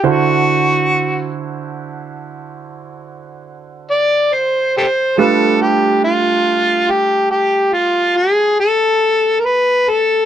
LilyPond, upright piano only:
\new Staff \with { instrumentName = "Upright piano" } { \time 12/8 \key g \major \tempo 4. = 47 <d e' fis' a' c''>1. | <g a d' f' b'>1. | }